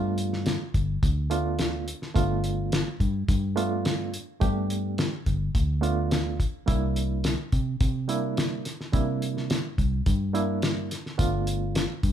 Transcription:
Already playing: G2 A3 B3 D4 F4
0.18 closed hi-hat
0.33 snare
0.46 snare, closed hi-hat
0.74 G1, kick, closed hi-hat
1.03 D2, kick, closed hi-hat
1.30 A3 B3 D4 F4, closed hi-hat
1.59 snare, closed hi-hat
1.88 closed hi-hat
2.02 snare
2.14 G1 A3 B3 D4 F4, kick, closed hi-hat
2.44 closed hi-hat
2.72 snare, closed hi-hat
3.00 G2, kick, closed hi-hat
3.29 G2, kick, closed hi-hat
3.56 A3 B3 D4 F4, closed hi-hat
3.85 snare, closed hi-hat
4.14 closed hi-hat
4.40 G2 A3 B3 D4 G4, kick, closed hi-hat
4.70 closed hi-hat
4.98 snare, closed hi-hat
5.26 G1, kick, closed hi-hat
5.55 D2, kick, closed hi-hat
5.81 A3 B3 D4 F4, closed hi-hat
6.11 snare, closed hi-hat
6.40 kick, closed hi-hat
6.66 C2 G3 A#3 D4 E4, kick, closed hi-hat
6.96 closed hi-hat
7.24 snare, closed hi-hat
7.52 C3, kick, closed hi-hat
7.81 C3, kick, closed hi-hat
8.08 G3 A#3 D4 E4, closed hi-hat
8.37 snare, closed hi-hat
8.65 snare, closed hi-hat
8.81 snare
8.92 C3 G3 A#3 D4 E4, kick, closed hi-hat
9.22 closed hi-hat
9.37 snare
9.50 snare, closed hi-hat
9.78 C2, kick, closed hi-hat
10.06 G2, kick, closed hi-hat
10.33 G3 A#3 D4 E4, closed hi-hat
10.62 snare, closed hi-hat
10.91 snare, closed hi-hat
11.06 snare
11.18 G1 A3 B3 D4 F4, kick, closed hi-hat
11.47 closed hi-hat
11.75 snare, closed hi-hat
12.03 G2, kick, closed hi-hat

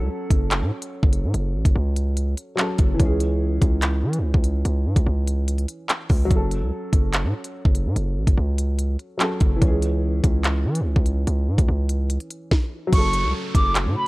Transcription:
Already playing: F#3 C#4 A4
0.31 F#1, kick, closed hi-hat
0.51 clap, closed hi-hat
0.62 A2
0.82 closed hi-hat
1.03 F#1, kick
1.13 closed hi-hat
1.24 A2
1.34 F#1, closed hi-hat
1.55 A1
1.65 F#1, kick, closed hi-hat
1.75 C#2
1.96 closed hi-hat
2.17 closed hi-hat
2.37 closed hi-hat
2.56 F#3 C#4, clap, closed hi-hat
2.61 A4
2.78 F#1, kick, closed hi-hat
2.94 E3
3.00 C#2 C#4, kick, closed hi-hat
3.05 G#4
3.20 closed hi-hat
3.62 C#2, kick, closed hi-hat
3.82 clap, closed hi-hat
4.03 E3
4.13 closed hi-hat
4.18 C#2
4.34 C#2, kick
4.44 closed hi-hat
4.65 C#2, closed hi-hat
4.86 G#2
4.96 C#2, kick, closed hi-hat
5.06 C#2
5.27 closed hi-hat
5.48 closed hi-hat
5.58 closed hi-hat
5.68 closed hi-hat
5.89 clap, closed hi-hat
6.09 C#2, kick, open hi-hat
6.25 F#3
6.31 F#1 C#4, kick, closed hi-hat
6.36 A4
6.51 closed hi-hat
6.62 C#2
6.93 F#1, kick, closed hi-hat
7.13 clap, closed hi-hat
7.24 A2
7.44 closed hi-hat
7.65 F#1, kick
7.75 closed hi-hat
7.86 A2
7.96 F#1, closed hi-hat
8.17 A1
8.27 F#1, kick, closed hi-hat
8.37 C#2
8.58 closed hi-hat
8.79 closed hi-hat
8.99 closed hi-hat
9.18 F#3 C#4, clap, closed hi-hat
9.23 A4
9.40 F#1, kick, closed hi-hat
9.56 E3
9.62 C#2 C#4, kick, closed hi-hat
9.67 G#4
9.82 closed hi-hat
10.24 C#2, kick, closed hi-hat
10.44 clap, closed hi-hat
10.65 E3
10.75 closed hi-hat
10.81 C#2
10.96 C#2, kick
11.06 closed hi-hat
11.27 C#2, closed hi-hat
11.48 G#2
11.58 C#2, kick, closed hi-hat
11.69 C#2
11.89 closed hi-hat
12.10 closed hi-hat
12.20 closed hi-hat
12.30 closed hi-hat
12.51 kick, snare
12.87 F#3
12.93 F#1 C#3 A3 C#4 F#4 C#6, kick, closed hi-hat, crash, downlifter
12.98 A4
13.13 closed hi-hat
13.24 C#2
13.55 F#1 D6, kick, closed hi-hat
13.75 clap, closed hi-hat
13.86 A2
13.96 B5

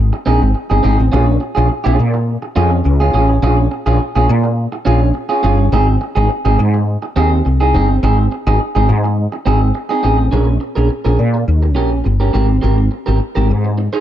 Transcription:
Already playing: G#1
0.13 muted clean electric guitar stroke
0.26 A#1 C4 D#4 G#4
0.41 G#1, muted clean electric guitar stroke
0.54 muted clean electric guitar stroke
0.70 G1 C4 D#4 G#4
0.83 G#1 C4 D#4 G#4
0.98 A1, muted clean electric guitar stroke
1.12 A#1 C#4 F4 G#4
1.27 muted clean electric guitar stroke
1.40 muted clean electric guitar stroke
1.55 A#1 C#4 F4 G#4
1.69 muted clean electric guitar stroke
1.84 A#1 C#4 F4 G#4
1.98 A#2, muted clean electric guitar stroke
2.14 muted clean electric guitar stroke
2.42 muted clean electric guitar stroke
2.56 F2 C#4 F4 G#4
2.72 muted clean electric guitar stroke
2.85 C#2, muted clean electric guitar stroke
3.00 C#4 F4 G#4
3.14 A1 C#4 F4 G#4
3.29 muted clean electric guitar stroke
3.42 A#1 C#4 F4 G#4
3.58 muted clean electric guitar stroke
3.71 muted clean electric guitar stroke
3.86 A#1 C#4 F4 G#4
4.00 muted clean electric guitar stroke
4.16 A#1 C#4 F4 G#4
4.29 A#2, muted clean electric guitar stroke
4.44 muted clean electric guitar stroke
4.72 muted clean electric guitar stroke
4.85 A#1 C#4 F4 G#4
5.01 muted clean electric guitar stroke
5.14 muted clean electric guitar stroke
5.29 C#4 F4 G#4
5.43 G1 C#4 F4 G#4
5.59 muted clean electric guitar stroke
5.72 G#1 C4 D#4 G#4
5.88 muted clean electric guitar stroke
6.01 muted clean electric guitar stroke
6.15 G#1 C4 D#4 G#4
6.30 muted clean electric guitar stroke
6.45 G#1 C4 D#4 G#4
6.59 G#2, muted clean electric guitar stroke
6.74 muted clean electric guitar stroke
7.02 muted clean electric guitar stroke
7.16 D#2 C4 D#4 G#4
7.31 muted clean electric guitar stroke
7.45 C2, muted clean electric guitar stroke
7.60 C4 D#4 G#4
7.74 G1 C4 D#4 G#4
7.90 muted clean electric guitar stroke
8.03 G#1 C4 D#4 G#4
8.18 muted clean electric guitar stroke
8.32 muted clean electric guitar stroke
8.47 G#1 C4 D#4 G#4
8.60 muted clean electric guitar stroke
8.75 G#1 C4 D#4 G#4
8.89 G#2, muted clean electric guitar stroke
9.04 muted clean electric guitar stroke
9.32 muted clean electric guitar stroke
9.46 G#1 C4 D#4 G#4
9.60 muted clean electric guitar stroke
9.75 muted clean electric guitar stroke
9.89 C4 D#4 G#4
10.03 A1 C4 D#4 G#4
10.18 muted clean electric guitar stroke
10.31 A#1 C#4 G#4 A#4
10.47 muted clean electric guitar stroke
10.60 muted clean electric guitar stroke
10.75 A#1 C#4 G#4 A#4
10.89 muted clean electric guitar stroke
11.05 A#1 C#4 G#4 A#4
11.19 A#2, muted clean electric guitar stroke
11.34 muted clean electric guitar stroke
11.48 D#2
11.63 muted clean electric guitar stroke
11.75 A#1 C#4 G4 A#4
11.91 muted clean electric guitar stroke
12.04 G1, muted clean electric guitar stroke
12.20 C#4 G4 A#4
12.33 G#1 C4 G4 A#4
12.48 muted clean electric guitar stroke
12.61 G#1 C4 G4 A#4
12.78 muted clean electric guitar stroke
12.91 muted clean electric guitar stroke
13.06 G#1 C4 G4 A#4
13.20 muted clean electric guitar stroke
13.35 G#1 C4 G4 A#4
13.49 G#2, muted clean electric guitar stroke
13.65 muted clean electric guitar stroke
13.78 muted clean electric guitar stroke
13.93 D#4 G#4 C5

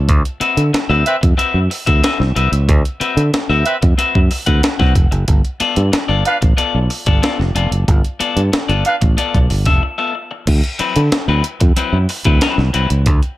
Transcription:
0.09 D2, kick, closed hi-hat
0.25 closed hi-hat
0.40 C4 F#4 B4 E5, muted fingered electric bass stroke, closed hi-hat
0.57 D3, closed hi-hat
0.73 muted clean electric guitar stroke, muted fingered electric bass stroke, snare, closed hi-hat
0.89 D2 C4 F#4 B4 E5
1.06 C4 B4 E5, muted clean electric guitar stroke, closed hi-hat
1.21 F2, muted clean electric guitar stroke, kick, closed hi-hat
1.37 C4 F#4 B4 E5, muted fingered electric bass stroke, closed hi-hat
1.54 F#2
1.70 muted clean electric guitar stroke, open hi-hat
1.86 D2 C4 F#4 B4 E5, kick, closed hi-hat
2.03 C4 F#4 B4 E5, snare, closed hi-hat
2.19 C2, muted clean electric guitar stroke, snare
2.36 C2 C4 F#4 B4 E5, closed hi-hat
2.52 C#2, muted clean electric guitar stroke, closed hi-hat
2.69 D2, kick, closed hi-hat
2.85 closed hi-hat
3.00 C4 F#4 B4 E5, muted fingered electric bass stroke, closed hi-hat
3.17 D3, closed hi-hat
3.33 muted fingered electric bass stroke, muted clean electric guitar stroke, snare, closed hi-hat
3.49 D2 C4 F#4 B4 E5
3.65 C4 B4 E5, muted clean electric guitar stroke, closed hi-hat
3.82 F2, muted clean electric guitar stroke, kick, closed hi-hat
3.98 C4 F#4 B4 E5, muted fingered electric bass stroke, closed hi-hat
4.15 F#2, kick
4.31 muted clean electric guitar stroke, open hi-hat
4.46 D2 C4 F#4 B4 F#5, kick, closed hi-hat
4.63 muted clean electric guitar stroke, snare, closed hi-hat
4.79 C2 C4 F#4 B4 F#5, kick, snare
4.95 F1, muted clean electric guitar stroke, kick, closed hi-hat
5.11 F#1, muted clean electric guitar stroke, closed hi-hat
5.28 G1, kick, closed hi-hat
5.45 closed hi-hat
5.60 B3 F4 A4 D5, muted fingered electric bass stroke, closed hi-hat
5.76 G2, closed hi-hat
5.92 muted clean electric guitar stroke, muted fingered electric bass stroke, snare, closed hi-hat
6.08 G1 B3 F4 A4 D5
6.25 D4 B4 F5, muted clean electric guitar stroke, closed hi-hat
6.41 A1, muted clean electric guitar stroke, kick, closed hi-hat
6.57 B3 F4 A4 D5, muted fingered electric bass stroke, closed hi-hat
6.75 B1
6.90 muted clean electric guitar stroke, open hi-hat
7.06 G1 B3 F4 A4 D5, kick, closed hi-hat
7.22 B3 F4 A4 D5, snare, closed hi-hat
7.39 F1, muted clean electric guitar stroke, snare
7.55 F1 B3 F4 A4 D5, closed hi-hat
7.71 F#1, muted clean electric guitar stroke, closed hi-hat
7.88 G1, kick, closed hi-hat
8.05 closed hi-hat
8.20 B3 F4 A4 D5, muted fingered electric bass stroke, closed hi-hat
8.36 G2, closed hi-hat
8.53 muted clean electric guitar stroke, muted fingered electric bass stroke, snare, closed hi-hat
8.69 G1 B3 F4 A4 D5, closed hi-hat
8.85 D4 B4 F5, muted clean electric guitar stroke, closed hi-hat
9.01 A1, muted clean electric guitar stroke, kick, closed hi-hat
9.17 B3 F4 A4 D5, closed hi-hat
9.35 B1, kick, closed hi-hat
9.50 G1, muted clean electric guitar stroke, open hi-hat
9.65 F1 B3 F4 A4 E5, kick, snare, closed hi-hat
9.82 muted clean electric guitar stroke
9.98 B3 F4 A4 E5
10.15 muted clean electric guitar stroke
10.31 muted clean electric guitar stroke
10.47 D2, kick, closed hi-hat, crash
10.64 closed hi-hat
10.79 F#3 C4 E4 B4, muted fingered electric bass stroke, closed hi-hat
10.96 D3, closed hi-hat
11.12 muted clean electric guitar stroke, muted fingered electric bass stroke, snare, closed hi-hat
11.28 D2 F#3 C4 E4 B4
11.44 muted clean electric guitar stroke, closed hi-hat
11.60 F2, muted clean electric guitar stroke, kick, closed hi-hat
11.76 F#3 C4 E4 B4, muted fingered electric bass stroke, closed hi-hat
11.93 F#2
12.09 muted clean electric guitar stroke, open hi-hat
12.24 D2 F#3 C4 E4 B4, kick, closed hi-hat
12.41 F#3 C4 E4 B4, snare, closed hi-hat
12.58 C2, muted clean electric guitar stroke, snare
12.74 C2 F#3 C4 E4 B4, closed hi-hat
12.90 C#2, muted clean electric guitar stroke, closed hi-hat
13.06 D2, kick, closed hi-hat
13.23 closed hi-hat

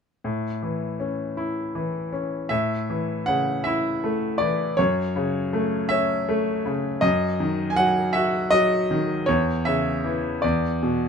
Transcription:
0.24 A2
0.63 E3
1.00 C#4
1.37 E4
1.75 E3
2.13 C#4
2.49 A2 E5
2.89 E3
3.26 C#3 F#5
3.64 E4 E5
4.04 A3
4.38 E3 D5
4.77 F#2 C#5
5.16 C#3
5.53 A3
5.89 C#4 E5
6.29 A3
6.66 C#3
7.01 F#2 D#5
7.40 D#3
7.70 G#5
7.76 F#3 F#5
8.13 F#4 E5
8.51 F#3 D#5
8.91 D#3
9.26 E2 C#5
9.65 C#3 E5
10.05 E3
10.42 E2 D5
10.83 B2

